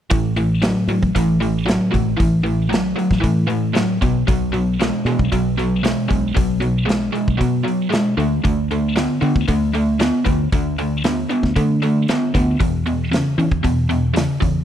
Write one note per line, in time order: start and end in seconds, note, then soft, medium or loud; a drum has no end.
0.10 0.73 A1 medium
0.10 0.34 A2 medium
0.10 0.34 E3 medium
0.10 kick loud
0.10 open hi-hat medium
0.37 0.60 A2 medium
0.37 0.60 E3 medium
0.37 open hi-hat soft
0.62 0.86 A2 medium
0.62 0.86 F#3 medium
0.62 snare medium
0.62 open hi-hat medium
0.88 0.98 A2 medium
0.88 1.12 A2 medium
0.88 1.12 F#3 medium
0.88 open hi-hat soft
1.02 1.12 A1 medium
1.02 kick medium
1.15 1.77 A1 medium
1.15 1.38 A2 medium
1.15 1.39 E3 medium
1.15 kick medium
1.15 open hi-hat medium
1.40 1.64 A2 medium
1.40 1.64 E3 medium
1.40 open hi-hat soft
1.66 1.90 A2 medium
1.66 1.90 F#3 medium
1.66 snare loud
1.66 open hi-hat medium
1.92 2.14 A1 medium
1.92 2.16 A2 medium
1.92 2.16 F#3 medium
1.92 kick medium
1.92 open hi-hat soft
2.17 2.92 A1 medium
2.17 2.42 A2 medium
2.17 2.42 E3 medium
2.17 kick loud
2.17 open hi-hat medium
2.43 2.68 A2 medium
2.43 2.68 E3 medium
2.43 open hi-hat soft
2.69 2.94 A2 medium
2.69 2.94 F#3 medium
2.69 open hi-hat medium
2.74 snare loud
2.96 3.19 A2 medium
2.96 3.20 F#3 medium
2.96 open hi-hat soft
3.11 3.21 A1 medium
3.11 kick medium
3.11 snare soft
3.21 3.45 A2 medium
3.21 3.85 A2 medium
3.21 3.46 E3 medium
3.21 kick medium
3.21 open hi-hat soft
3.48 3.72 A2 medium
3.48 3.72 E3 medium
3.48 open hi-hat soft
3.74 3.98 A2 medium
3.74 3.99 F#3 medium
3.74 snare medium
3.74 open hi-hat medium
4.02 4.22 B1 medium
4.02 4.25 B2 medium
4.02 4.25 F#3 medium
4.02 kick medium
4.02 open hi-hat soft
4.27 4.90 B1 medium
4.27 4.51 B2 medium
4.27 4.51 F#3 medium
4.27 kick medium
4.27 open hi-hat medium
4.52 4.76 B2 medium
4.52 4.77 F#3 medium
4.52 open hi-hat soft
4.80 5.03 B2 medium
4.80 5.03 G#3 medium
4.80 snare loud
4.80 open hi-hat medium
5.05 5.16 B2 medium
5.05 5.29 B2 medium
5.05 5.29 G#3 medium
5.05 open hi-hat soft
5.19 5.29 B1 medium
5.19 kick medium
5.32 5.94 B1 medium
5.32 5.55 B2 medium
5.32 5.56 F#3 medium
5.32 kick medium
5.32 open hi-hat medium
5.58 5.81 B2 medium
5.58 5.82 F#3 medium
5.58 open hi-hat soft
5.83 6.07 B2 medium
5.83 6.07 G#3 medium
5.83 snare medium
5.83 open hi-hat medium
6.08 6.31 B1 medium
6.08 6.33 B2 medium
6.08 6.33 G#3 medium
6.08 kick medium
6.08 open hi-hat soft
6.34 7.09 B1 medium
6.34 6.59 B2 medium
6.34 6.59 F#3 medium
6.34 kick loud
6.34 open hi-hat medium
6.60 6.85 B2 medium
6.60 6.85 F#3 medium
6.60 open hi-hat soft
6.86 7.10 B2 medium
6.86 7.11 G#3 medium
6.86 open hi-hat medium
6.90 snare loud
7.13 7.37 B2 soft
7.13 7.37 G#3 medium
7.13 open hi-hat soft
7.28 7.38 B1 medium
7.28 kick medium
7.38 7.62 B2 medium
7.38 8.02 B2 medium
7.38 7.63 F#3 medium
7.38 kick medium
7.38 open hi-hat medium
7.64 7.89 B2 medium
7.64 7.89 F#3 medium
7.64 open hi-hat soft
7.90 8.15 B2 medium
7.90 8.15 G#3 medium
7.90 snare medium
7.90 open hi-hat medium
8.17 8.38 D2 medium
8.17 8.41 D3 medium
8.17 8.41 A3 medium
8.17 open hi-hat soft
8.44 9.06 D2 medium
8.44 8.67 D3 medium
8.44 8.67 A3 medium
8.44 kick medium
8.44 open hi-hat medium
8.71 8.94 D3 medium
8.71 8.94 A3 medium
8.71 open hi-hat soft
8.96 9.19 D3 medium
8.96 9.19 B3 medium
8.96 snare medium
8.96 open hi-hat medium
9.21 9.45 D3 medium
9.21 9.32 D3 medium
9.21 9.45 B3 medium
9.21 open hi-hat soft
9.35 9.46 D2 medium
9.35 kick medium
9.48 10.10 D2 medium
9.48 9.71 D3 medium
9.48 9.71 A3 medium
9.48 kick medium
9.48 open hi-hat medium
9.74 9.97 D3 medium
9.74 9.98 A3 medium
9.74 open hi-hat soft
9.99 10.23 D3 medium
9.99 10.23 B3 medium
9.99 snare medium
9.99 open hi-hat medium
10.25 10.46 D2 medium
10.25 10.49 D3 medium
10.25 10.49 B3 medium
10.25 kick medium
10.25 open hi-hat medium
10.52 11.24 D2 medium
10.52 10.76 D3 medium
10.52 10.76 A3 medium
10.52 kick loud
10.52 open hi-hat medium
10.78 11.02 D3 medium
10.78 11.02 A3 medium
10.78 open hi-hat soft
11.04 11.27 D3 medium
11.04 11.28 B3 medium
11.04 snare medium
11.04 open hi-hat medium
11.29 11.53 D3 medium
11.29 11.53 B3 medium
11.29 open hi-hat soft
11.43 11.53 D2 medium
11.43 kick medium
11.43 snare soft
11.56 11.79 D3 medium
11.56 12.18 D3 medium
11.56 11.79 A3 medium
11.56 kick medium
11.56 open hi-hat medium
11.82 12.05 D3 medium
11.82 12.05 A3 medium
11.82 open hi-hat soft
12.08 12.32 D3 medium
12.08 12.32 B3 medium
12.08 snare medium
12.08 open hi-hat medium
12.34 12.55 D2 medium
12.34 12.57 D3 medium
12.34 12.57 B3 medium
12.34 kick medium
12.34 open hi-hat soft
12.60 12.83 E2 medium
12.60 13.22 E2 medium
12.60 12.83 B2 medium
12.60 kick medium
12.60 open hi-hat medium
12.86 13.09 E2 medium
12.86 13.09 B2 medium
12.86 open hi-hat soft
13.12 13.35 E2 medium
13.12 13.35 C#3 medium
13.12 snare medium
13.12 open hi-hat medium
13.38 13.61 E2 medium
13.38 13.61 C#3 medium
13.38 13.48 E3 medium
13.38 open hi-hat soft
13.52 13.61 E2 medium
13.52 kick medium
13.63 13.86 E2 medium
13.63 14.25 E2 medium
13.63 13.87 B2 medium
13.63 kick medium
13.63 open hi-hat medium
13.89 14.12 E2 medium
13.89 14.13 B2 medium
13.89 open hi-hat soft
14.14 14.38 E2 medium
14.14 14.38 C#3 medium
14.14 snare medium
14.14 open hi-hat medium
14.40 14.64 E2 medium
14.40 14.62 E2 medium
14.40 14.64 C#3 medium
14.40 kick medium
14.40 open hi-hat soft